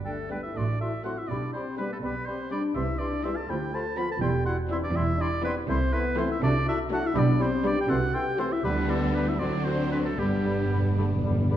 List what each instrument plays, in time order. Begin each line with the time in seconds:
Already playing: double bass section G1, cello section G2
0.04 bassoon G3, french horn section A3, clarinet D4, oboe A4, flute G5
0.29 bassoon G3, viola section G3, violin section B3 D4, clarinet D4, oboe B4, flute G5
0.34 french horn section B3
0.43 french horn section E4, oboe E5
0.54 double bass section A1, cello section A2, bassoon A3, french horn section D4, clarinet F#4, oboe D5, flute C6
0.80 bassoon A3, french horn section E4, clarinet F#4, oboe E5, flute C6
1.04 viola section F#3, violin section A3 C4, bassoon A3, clarinet F#4, french horn section F#4, oboe F#5, flute C6
1.18 french horn section E4, oboe E5
1.28 double bass section B1, cello section B2, bassoon G3, clarinet G4, oboe D5, flute B5
1.32 french horn section D4
1.53 bassoon G3, french horn section C4, clarinet G4, oboe C5, flute B5
1.77 violin section G3 D4, bassoon G3, viola section G3, french horn section B3, oboe B4, flute B5
1.81 clarinet G4
1.91 french horn section A3, oboe A4
2.02 double bass section B1, cello section B2, bassoon G3, french horn section B3, clarinet G4, oboe B4, flute B5
2.26 bassoon G3, french horn section C4, clarinet G4, oboe C5, flute B5
2.51 bassoon G3, violin section G3 D4, viola section G3, french horn section D4, clarinet G4, oboe D5, flute B5
2.75 double bass section C2, cello section C3, bassoon E3, french horn section E4, clarinet G4, oboe E5, flute C6
2.98 bassoon E3, french horn section D4, clarinet G4, oboe D5, flute C6
3.23 bassoon E3, violin section G3 C4, viola section G3, french horn section E4, clarinet G4, oboe E5, flute C6
3.36 french horn section A4, oboe A5
3.48 cello section D2, double bass section D2, bassoon F3, clarinet F4, french horn section G4, oboe G5, flute B5
3.72 bassoon F3, clarinet F4, french horn section A4, oboe A5, flute B5
3.96 bassoon F3, viola section F3, violin section B3, clarinet F4, french horn section B4, oboe B5, flute B5
4.09 french horn section A4, oboe A5
4.20 double bass section E1, cello section E2, bassoon G3, clarinet E4, french horn section G4, oboe G5, flute C6
4.45 bassoon G3, clarinet E4, french horn section F#4, oboe F#5, flute C6
4.69 viola section E3, bassoon G3, violin section C4 E4, french horn section E4, clarinet E4, oboe E5, flute C6
4.81 french horn section D4, oboe D5
4.92 double bass section E1, cello section E2, bassoon G3, french horn section E4
4.96 clarinet E4, oboe E5, flute C6
5.16 bassoon G3, french horn section D4, clarinet E4
5.21 oboe D5, flute C6
5.42 viola section E3, bassoon G3, french horn section B3, violin section C4 E4, clarinet E4, oboe B4, flute C6
5.65 double bass section C2, cello section C3, bassoon A3, french horn section C4, clarinet E4, oboe C5
5.70 flute C6
5.92 bassoon A3, french horn section B3, clarinet E4, oboe B4, flute C6
6.17 viola section E3, violin section A3 E4, bassoon A3, french horn section C4, clarinet E4, oboe C5, flute C6
6.29 french horn section E4, oboe E5
6.41 double bass section C2, cello section C3, bassoon A3, french horn section D4, clarinet F#4, oboe D5, flute A5
6.65 bassoon A3, french horn section E4, clarinet F#4, oboe E5, flute A5
6.91 viola section F#3, violin section A3 D4, bassoon A3, french horn section F#4, clarinet F#4, oboe F#5, flute A5
7.04 french horn section E4, oboe E5
7.13 double bass section B1, cello section B2, bassoon G3, french horn section D4, clarinet G4, flute B5
7.18 oboe D5
7.39 bassoon G3, french horn section C4, clarinet G4, oboe C5, flute B5
7.64 viola section G3, bassoon G3, violin section B3 D4, french horn section D4, clarinet G4, oboe D5, flute B5
7.77 french horn section G4, oboe G5
7.88 double bass section C2, cello section C3, bassoon E3, french horn section F#4, clarinet A4, oboe F#5, flute C6
8.12 bassoon E3, french horn section G4, clarinet A4, oboe G5, flute C6
8.38 viola section E3, bassoon E3, violin section A3 E4, french horn section C4, clarinet A4, oboe C5, flute C6
8.52 french horn section E4, oboe E5
8.63 double bass section D2, timpani D3, bassoon D3, cello section D3, viola section G3, violin section B3 D4, french horn section B3, clarinet G4, oboe B4, flute B5
8.88 bassoon D3, french horn section A3, clarinet G4, oboe A4, flute B5
9.14 bassoon D3, french horn section B3, clarinet G4, oboe B4, flute B5
9.28 french horn section E4, oboe E5
9.39 double bass section D2, cello section D3, bassoon D3, viola section F#3, violin section C4 D4, french horn section D4, clarinet F#4, oboe D5, flute C6
9.64 bassoon D3, french horn section C4, clarinet F#4, oboe C5, flute C6
9.91 bassoon D3, french horn section B3, clarinet F#4, oboe B4, flute C6
10.05 french horn section A3, oboe A4
10.18 double bass section G1, cello section G2, timpani G2, bassoon D3, viola section G3, french horn section G3, violin section B3 D4, clarinet G4, oboe G4, flute B5
10.27 timpani G2
10.35 timpani G2
10.43 timpani G2, bassoon D3, clarinet G4, flute B5
10.51 timpani G2
10.59 timpani G2
10.67 timpani G2
10.71 timpani G2, bassoon D3, clarinet G4, flute B5
10.82 timpani G2
10.91 timpani G2
10.97 timpani G2, bassoon D3, viola section A3, clarinet G4, flute B5
11.06 timpani G2
11.14 timpani G2
11.21 timpani G2, bassoon D3, viola section G3, clarinet G4, flute B5
11.30 timpani G2
11.38 timpani G2
11.46 timpani G2, clarinet G4
11.50 timpani G2, bassoon D3, viola section B3, flute B5